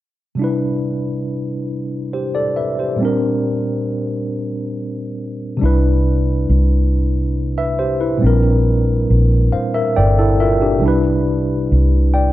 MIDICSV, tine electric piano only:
0, 0, Header, 1, 2, 480
1, 0, Start_track
1, 0, Key_signature, 0, "major"
1, 0, Tempo, 869565
1, 217, Time_signature, 6, 3, 24, 8
1, 6805, End_track
2, 0, Start_track
2, 0, Title_t, "Tine electric piano"
2, 0, Program_c, 0, 4
2, 194, Note_on_c, 0, 48, 50
2, 206, Note_on_c, 0, 55, 47
2, 217, Note_on_c, 0, 62, 51
2, 231, Note_on_c, 0, 64, 52
2, 243, Note_on_c, 0, 71, 58
2, 328, Control_c, 0, 64, 127
2, 1171, Note_off_c, 0, 71, 0
2, 1178, Note_on_c, 0, 72, 48
2, 1181, Note_on_c, 0, 67, 43
2, 1291, Note_off_c, 0, 72, 0
2, 1293, Note_off_c, 0, 67, 0
2, 1296, Note_on_c, 0, 74, 57
2, 1300, Note_on_c, 0, 69, 50
2, 1410, Note_off_c, 0, 74, 0
2, 1413, Note_off_c, 0, 69, 0
2, 1415, Note_on_c, 0, 76, 46
2, 1420, Note_on_c, 0, 71, 44
2, 1530, Note_off_c, 0, 76, 0
2, 1533, Note_off_c, 0, 71, 0
2, 1541, Note_on_c, 0, 72, 45
2, 1545, Note_on_c, 0, 67, 40
2, 1623, Note_off_c, 0, 48, 0
2, 1629, Note_off_c, 0, 55, 0
2, 1635, Note_off_c, 0, 62, 0
2, 1635, Note_on_c, 0, 46, 55
2, 1642, Note_off_c, 0, 64, 0
2, 1647, Note_on_c, 0, 55, 49
2, 1658, Note_on_c, 0, 60, 54
2, 1665, Control_c, 0, 64, 0
2, 1670, Note_on_c, 0, 62, 57
2, 1683, Note_on_c, 0, 70, 60
2, 1751, Control_c, 0, 64, 127
2, 1767, Note_off_c, 0, 72, 0
2, 1769, Note_off_c, 0, 67, 0
2, 3064, Note_off_c, 0, 46, 0
2, 3070, Note_off_c, 0, 55, 0
2, 3075, Note_on_c, 0, 48, 63
2, 3076, Note_off_c, 0, 60, 0
2, 3081, Note_off_c, 0, 62, 0
2, 3086, Note_on_c, 0, 55, 50
2, 3088, Note_off_c, 0, 70, 0
2, 3099, Note_on_c, 0, 62, 54
2, 3105, Control_c, 0, 64, 0
2, 3112, Note_on_c, 0, 64, 54
2, 3122, Note_on_c, 0, 71, 70
2, 3189, Control_c, 0, 64, 127
2, 3810, Note_off_c, 0, 64, 0
2, 3815, Note_off_c, 0, 71, 0
2, 4183, Note_on_c, 0, 76, 60
2, 4186, Note_on_c, 0, 71, 46
2, 4294, Note_off_c, 0, 76, 0
2, 4295, Note_off_c, 0, 71, 0
2, 4300, Note_on_c, 0, 72, 59
2, 4303, Note_on_c, 0, 67, 44
2, 4412, Note_off_c, 0, 72, 0
2, 4414, Note_off_c, 0, 67, 0
2, 4419, Note_on_c, 0, 71, 55
2, 4421, Note_on_c, 0, 64, 42
2, 4504, Note_off_c, 0, 48, 0
2, 4510, Note_off_c, 0, 55, 0
2, 4514, Note_on_c, 0, 46, 65
2, 4516, Note_off_c, 0, 62, 0
2, 4527, Note_on_c, 0, 55, 55
2, 4538, Note_on_c, 0, 60, 57
2, 4543, Control_c, 0, 64, 0
2, 4551, Note_on_c, 0, 62, 52
2, 4563, Note_on_c, 0, 70, 70
2, 4646, Note_off_c, 0, 71, 0
2, 4647, Note_off_c, 0, 64, 0
2, 4649, Control_c, 0, 64, 127
2, 5250, Note_off_c, 0, 62, 0
2, 5256, Note_off_c, 0, 70, 0
2, 5258, Note_on_c, 0, 77, 49
2, 5261, Note_on_c, 0, 72, 45
2, 5371, Note_off_c, 0, 77, 0
2, 5373, Note_off_c, 0, 72, 0
2, 5379, Note_on_c, 0, 76, 63
2, 5383, Note_on_c, 0, 70, 54
2, 5492, Note_off_c, 0, 76, 0
2, 5494, Note_off_c, 0, 70, 0
2, 5501, Note_on_c, 0, 74, 58
2, 5501, Note_on_c, 0, 79, 54
2, 5504, Note_on_c, 0, 69, 46
2, 5613, Note_off_c, 0, 74, 0
2, 5615, Note_off_c, 0, 69, 0
2, 5623, Note_on_c, 0, 69, 65
2, 5627, Note_on_c, 0, 64, 53
2, 5722, Note_off_c, 0, 79, 0
2, 5734, Note_off_c, 0, 69, 0
2, 5736, Note_off_c, 0, 64, 0
2, 5742, Note_on_c, 0, 76, 56
2, 5743, Note_on_c, 0, 70, 56
2, 5745, Note_on_c, 0, 65, 45
2, 5854, Note_off_c, 0, 70, 0
2, 5855, Note_off_c, 0, 65, 0
2, 5861, Note_on_c, 0, 67, 53
2, 5864, Note_on_c, 0, 62, 44
2, 5943, Note_off_c, 0, 46, 0
2, 5950, Note_off_c, 0, 55, 0
2, 5955, Note_off_c, 0, 60, 0
2, 5958, Note_on_c, 0, 48, 62
2, 5963, Note_off_c, 0, 76, 0
2, 5969, Note_on_c, 0, 55, 58
2, 5975, Note_off_c, 0, 62, 0
2, 5982, Note_on_c, 0, 62, 56
2, 5984, Control_c, 0, 64, 0
2, 5994, Note_on_c, 0, 64, 59
2, 6005, Note_on_c, 0, 71, 75
2, 6087, Note_off_c, 0, 67, 0
2, 6092, Control_c, 0, 64, 127
2, 6691, Note_off_c, 0, 64, 0
2, 6697, Note_off_c, 0, 71, 0
2, 6700, Note_on_c, 0, 79, 53
2, 6704, Note_on_c, 0, 74, 42
2, 6805, Note_off_c, 0, 48, 0
2, 6805, Note_off_c, 0, 55, 0
2, 6805, Note_off_c, 0, 62, 0
2, 6805, Note_off_c, 0, 74, 0
2, 6805, Note_off_c, 0, 79, 0
2, 6805, End_track
0, 0, End_of_file